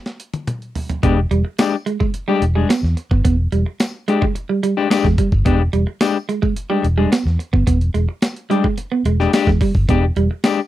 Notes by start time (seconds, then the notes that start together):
0.06 snare, closed hi-hat
0.20 closed hi-hat
0.34 closed hi-hat, high tom
0.47 closed hi-hat, mid tom
0.62 closed hi-hat
0.75 floor tom, open hi-hat
0.89 closed hi-hat, floor tom
1.03 E1 G#3 B3 D4 G4, kick, closed hi-hat
1.31 E1 G3, closed hi-hat
1.45 muted clean electric guitar stroke
1.58 G#3 D4 G4, muted clean electric guitar stroke, snare, closed hi-hat, tambourine
1.86 G#3, closed hi-hat
2.00 G#3, kick
2.14 closed hi-hat
2.28 G3 G#3 D4 G4
2.42 E1, muted clean electric guitar stroke, closed hi-hat
2.55 G3 G#3 D4 G#4
2.69 B3, snare, closed hi-hat, tambourine
2.83 E2, snare
2.97 muted clean electric guitar stroke, closed hi-hat
3.11 G1 B3, kick
3.25 E1 B3, kick, closed hi-hat
3.52 E1 G3, closed hi-hat
3.66 muted clean electric guitar stroke
3.80 muted clean electric guitar stroke, snare, closed hi-hat, tambourine
4.08 G#3 D4 G4, closed hi-hat
4.22 G#3, kick
4.35 muted clean electric guitar stroke, closed hi-hat
4.49 G3
4.63 G3, closed hi-hat
4.77 G#3 D4 G4
4.90 G#3 D4 G4, muted clean electric guitar stroke, snare, closed hi-hat, tambourine
5.04 E2 G#3, kick, snare
5.18 G3, kick, closed hi-hat
5.32 G1, kick
5.45 E1 G#3 B3 D4 G4, kick, closed hi-hat
5.73 E1 G3, closed hi-hat
5.87 muted clean electric guitar stroke
6.01 G#3 D4 G4, muted clean electric guitar stroke, snare, closed hi-hat, tambourine
6.29 G#3, closed hi-hat
6.42 G#3, kick
6.56 closed hi-hat
6.70 G3 G#3 D4 G4
6.83 E1, muted clean electric guitar stroke, closed hi-hat
6.98 G3 G#3 D4 G#4
7.12 B3, snare, closed hi-hat, tambourine
7.25 E2, snare
7.39 muted clean electric guitar stroke, closed hi-hat
7.53 G1 B3, kick
7.67 E1 B3, kick, closed hi-hat
7.81 closed hi-hat
7.94 E1 G#3, closed hi-hat
8.09 muted clean electric guitar stroke
8.22 muted clean electric guitar stroke, snare, closed hi-hat, tambourine
8.36 closed hi-hat
8.50 G3 G#3 D4 G4, closed hi-hat
8.64 G#3, kick
8.78 muted clean electric guitar stroke, closed hi-hat
8.92 B3
9.05 E1 G#3, closed hi-hat
9.20 G#3 D4 G4, snare
9.33 G#3 D4 G4, muted clean electric guitar stroke, snare, closed hi-hat, tambourine
9.47 E2 G#3, kick, snare
9.61 G3, kick, open hi-hat
9.75 G1, kick
9.89 E1 G#3 B3 D4 G4, kick, closed hi-hat
10.16 E1 G3, closed hi-hat
10.31 muted clean electric guitar stroke
10.44 G#3 D4 G4, muted clean electric guitar stroke, snare, closed hi-hat, tambourine